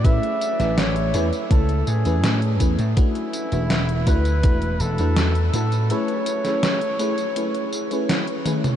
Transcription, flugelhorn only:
\new Staff \with { instrumentName = "Flugelhorn" } { \time 4/4 \key a \major \tempo 4 = 82 e''4 cis''8 r8 a'8 gis'4 r8 | e'4. b'4 a'4 a'8 | cis''2. r4 | }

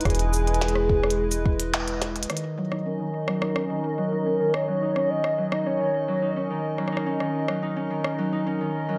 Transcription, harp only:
\new Staff \with { instrumentName = "Harp" } { \clef bass \time 4/4 \key fis \mixolydian \tempo 4 = 107 r1 | dis16 r16 fis16 dis'16 cis'16 dis16 r16 fis16 dis'16 cis'16 dis16 r16 fis16 dis'16 cis'16 dis16 | r16 fis16 dis'16 cis'16 dis16 r16 fis16 dis'16 cis'16 dis16 r16 fis16 dis'16 cis'16 dis16 r16 | fis16 dis'16 cis'16 dis16 r16 fis16 dis'16 cis'16 dis16 r16 fis16 dis'16 cis'16 dis16 r16 fis16 | }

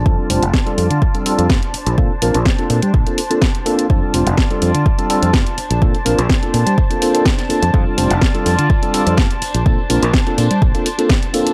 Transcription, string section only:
\new Staff \with { instrumentName = "String section" } { \time 4/4 \key bes \lydian \tempo 4 = 125 << { a''1~ | a''1 | a''1~ | a''1~ |
a''1~ | a''1 | } \\ { <f' d''>2.~ <f' d''>8 <d' c''>8~ | <d' c''>1 | <f' d''>2.~ <f' d''>8 <d' c''>8~ | <d' c''>1 |
<f' d''>2.~ <f' d''>8 <d' c''>8~ | <d' c''>1 | } >> }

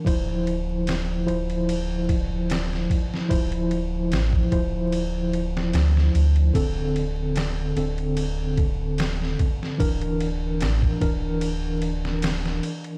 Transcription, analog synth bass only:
\new Staff \with { instrumentName = "Analog synth bass" } { \clef bass \time 4/4 \key d \minor \tempo 4 = 74 d,,4. d,,2 r8 | d,,4 a,,8 d,,4. d,8 d,8 | d,,4. d,,2 r8 | d,,4 a,,8 d,,2 r8 | }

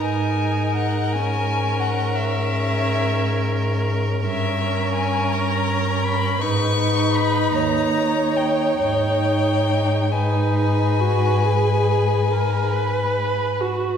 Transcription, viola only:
\new Staff \with { instrumentName = "Viola" } { \time 12/8 \key gis \minor \tempo 4. = 54 dis'4. cis'1~ cis'8 | des'2. dis'2. | dis'4. dis'4 fis'8 gis'4 ais'8 b'4 fis'8 | }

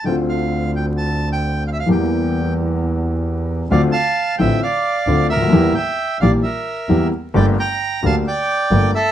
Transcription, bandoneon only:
\new Staff \with { instrumentName = "Bandoneon" } { \time 4/4 \key d \minor \tempo 4 = 132 g''8 f''4 g''8 a''8. g''8. f''32 e''32 f''16 | g''4. r2 r8 | <d'' f''>8 <f'' a''>4 <e'' g''>8 <d'' f''>4. <bes' e''>8~ | <bes' e''>8 <e'' g''>4 <d'' f''>8 <bes' e''>4. r8 |
<d'' g''>8 <g'' bes''>4 <f'' a''>8 <d'' g''>4. <a' e''>8 | }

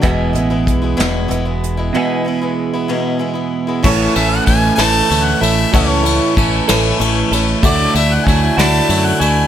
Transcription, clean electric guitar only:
\new Staff \with { instrumentName = "Clean electric guitar" } { \time 6/8 \key a \major \tempo 4. = 63 <e, b, e gis b gis'>2. | <e, b, e gis b gis'>2. | <a, e a cis' a'>8 <a cis' a'>8 <e a cis' a'>8 <a, e a cis' a'>4 <a cis' a'>8 | <a, e a cis' a'>8 <a cis' a'>8 <e a cis' a'>8 <a, e a cis' a'>4 <a cis' a'>8 |
<d a e' fis'>8 <a e' fis'>8 <d a e' fis'>8 <d a e' fis'>4 <a e' fis'>8 | }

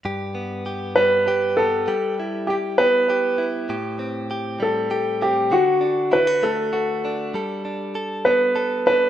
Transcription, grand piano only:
\new Staff \with { instrumentName = "Grand piano" } { \time 6/8 \key g \major \tempo 4. = 66 r4. b'4 a'8~ | a'8 r8 g'8 b'4 r8 | r4. a'4 g'8 | fis'4 b'8 a'4 r8 |
r4. b'4 b'8 | }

